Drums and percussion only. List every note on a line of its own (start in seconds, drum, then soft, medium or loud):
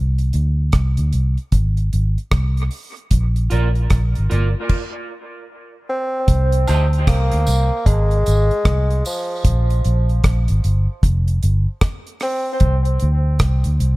0.18 closed hi-hat soft
0.33 closed hi-hat medium
0.72 kick medium
0.72 cross-stick medium
0.72 closed hi-hat medium
0.97 closed hi-hat soft
1.13 closed hi-hat medium
1.38 closed hi-hat soft
1.52 kick loud
1.52 closed hi-hat medium
1.77 closed hi-hat soft
1.93 closed hi-hat medium
2.18 closed hi-hat soft
2.32 kick loud
2.32 cross-stick loud
2.32 closed hi-hat medium
2.57 closed hi-hat soft
2.71 open hi-hat medium
2.97 closed hi-hat soft
3.11 kick loud
3.11 closed hi-hat loud
3.36 closed hi-hat soft
3.51 closed hi-hat medium
3.75 closed hi-hat soft
3.90 kick loud
3.90 cross-stick medium
3.90 closed hi-hat medium
4.15 closed hi-hat soft
4.31 closed hi-hat medium
4.69 kick medium
4.69 crash medium
6.28 kick loud
6.28 closed hi-hat loud
6.52 closed hi-hat soft
6.67 closed hi-hat medium
6.67 tambourine soft
6.67 high woodblock medium
6.93 closed hi-hat soft
7.07 kick loud
7.07 cross-stick medium
7.07 closed hi-hat medium
7.31 closed hi-hat medium
7.47 closed hi-hat medium
7.47 tambourine medium
7.86 kick loud
7.86 closed hi-hat loud
7.86 high woodblock medium
8.11 closed hi-hat soft
8.26 closed hi-hat medium
8.26 tambourine soft
8.51 closed hi-hat soft
8.65 kick loud
8.65 cross-stick loud
8.65 closed hi-hat medium
8.90 closed hi-hat soft
9.05 open hi-hat medium
9.05 tambourine medium
9.45 kick loud
9.45 closed hi-hat loud
9.70 closed hi-hat medium
9.85 closed hi-hat medium
10.09 closed hi-hat soft
10.24 kick loud
10.24 cross-stick loud
10.24 closed hi-hat medium
10.48 closed hi-hat medium
10.64 closed hi-hat medium
11.03 kick loud
11.03 closed hi-hat medium
11.28 closed hi-hat soft
11.43 closed hi-hat medium
11.81 kick loud
11.81 cross-stick loud
11.81 closed hi-hat medium
12.07 closed hi-hat soft
12.20 cross-stick medium
12.20 open hi-hat medium
12.60 kick loud
12.60 closed hi-hat loud
12.85 closed hi-hat medium
13.00 closed hi-hat medium
13.39 kick loud
13.39 cross-stick medium
13.39 closed hi-hat medium
13.64 closed hi-hat medium
13.80 closed hi-hat medium